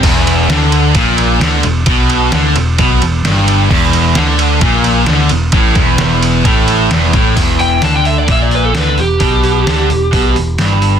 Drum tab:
CC |x-------|--------|x-------|--------|
RD |xxxxxxxx|xxxxxxxx|-xxxxxxx|xxxxxxxx|
HH |--------|--------|--------|--------|
SD |--o---o-|--o---o-|--o---o-|--o---o-|
BD |o---o---|o---o---|o---o---|oo--o--o|

CC |x-------|--------|
RD |--------|--------|
HH |oooooooo|oooooooo|
SD |--o---o-|--o---o-|
BD |o---o---|o---o---|